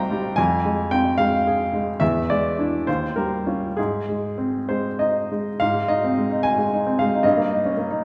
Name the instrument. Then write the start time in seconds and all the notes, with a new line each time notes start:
upright piano
Already playing: C2 G3 C4 C5 D#5 F5 G5 A#5
0.11 G3
0.36 F2 G#5
0.65 G#3
0.91 C4 G5
1.18 G#3 F5
1.47 G#4
1.73 G#3
2.00 E2 E5
2.30 G#3 D5
2.59 D4 E4
2.87 D#2 C5
3.16 G3 A#4
3.47 C#4 F4
3.77 G#2 G#4
4.09 G#3
4.38 C4
4.69 G#3 C5
4.99 D#4 D#5
5.32 G#3
5.60 G#2 F5
5.74 G#3
5.88 D#4 D#5
6.04 C4
6.17 G#3
6.31 D#4
6.43 G#5
6.58 G#3
6.73 D#4
6.87 C4
6.99 G#3 F5
7.14 D#4
7.23 G2 D#5
7.37 A#3
7.53 D#4
7.66 C#4
7.77 A#3
7.90 D#4